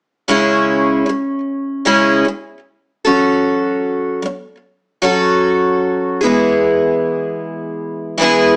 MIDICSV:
0, 0, Header, 1, 2, 480
1, 0, Start_track
1, 0, Tempo, 792917
1, 166, Time_signature, 4, 2, 24, 8
1, 5184, End_track
2, 0, Start_track
2, 0, Title_t, "Twelve-string acoustic guitar"
2, 0, Program_c, 0, 25
2, 169, Note_on_c, 0, 49, 61
2, 172, Note_on_c, 0, 56, 60
2, 176, Note_on_c, 0, 61, 67
2, 183, Note_on_c, 0, 64, 71
2, 187, Note_on_c, 0, 68, 65
2, 634, Note_off_c, 0, 49, 0
2, 641, Note_on_c, 0, 49, 40
2, 649, Note_off_c, 0, 56, 0
2, 655, Note_off_c, 0, 64, 0
2, 657, Note_off_c, 0, 68, 0
2, 662, Note_on_c, 0, 56, 49
2, 836, Note_off_c, 0, 49, 0
2, 846, Note_off_c, 0, 56, 0
2, 1121, Note_on_c, 0, 49, 57
2, 1124, Note_on_c, 0, 56, 63
2, 1127, Note_off_c, 0, 61, 0
2, 1129, Note_on_c, 0, 61, 63
2, 1131, Note_on_c, 0, 64, 70
2, 1135, Note_on_c, 0, 68, 69
2, 1354, Note_off_c, 0, 49, 0
2, 1361, Note_on_c, 0, 49, 38
2, 1365, Note_off_c, 0, 56, 0
2, 1368, Note_off_c, 0, 61, 0
2, 1369, Note_off_c, 0, 64, 0
2, 1371, Note_off_c, 0, 68, 0
2, 1382, Note_on_c, 0, 56, 42
2, 1556, Note_off_c, 0, 49, 0
2, 1566, Note_off_c, 0, 56, 0
2, 1845, Note_on_c, 0, 69, 50
2, 1851, Note_on_c, 0, 66, 49
2, 1857, Note_on_c, 0, 61, 43
2, 1861, Note_on_c, 0, 54, 40
2, 2549, Note_off_c, 0, 54, 0
2, 2556, Note_on_c, 0, 54, 46
2, 2565, Note_off_c, 0, 69, 0
2, 2568, Note_off_c, 0, 61, 0
2, 2569, Note_off_c, 0, 66, 0
2, 2576, Note_on_c, 0, 61, 51
2, 2753, Note_off_c, 0, 54, 0
2, 2763, Note_off_c, 0, 61, 0
2, 3038, Note_on_c, 0, 54, 68
2, 3045, Note_on_c, 0, 61, 60
2, 3049, Note_on_c, 0, 66, 72
2, 3055, Note_on_c, 0, 69, 69
2, 3756, Note_off_c, 0, 69, 0
2, 3758, Note_on_c, 0, 68, 50
2, 3762, Note_off_c, 0, 54, 0
2, 3765, Note_off_c, 0, 61, 0
2, 3768, Note_off_c, 0, 66, 0
2, 3770, Note_on_c, 0, 64, 49
2, 3777, Note_on_c, 0, 59, 51
2, 3784, Note_on_c, 0, 56, 41
2, 3794, Note_on_c, 0, 52, 46
2, 4942, Note_off_c, 0, 52, 0
2, 4949, Note_on_c, 0, 52, 60
2, 4958, Note_off_c, 0, 56, 0
2, 4961, Note_on_c, 0, 56, 61
2, 4965, Note_off_c, 0, 59, 0
2, 4967, Note_off_c, 0, 64, 0
2, 4968, Note_on_c, 0, 59, 69
2, 4975, Note_on_c, 0, 64, 74
2, 4978, Note_off_c, 0, 68, 0
2, 4981, Note_on_c, 0, 68, 73
2, 5184, Note_off_c, 0, 52, 0
2, 5184, Note_off_c, 0, 56, 0
2, 5184, Note_off_c, 0, 59, 0
2, 5184, Note_off_c, 0, 64, 0
2, 5184, Note_off_c, 0, 68, 0
2, 5184, End_track
0, 0, End_of_file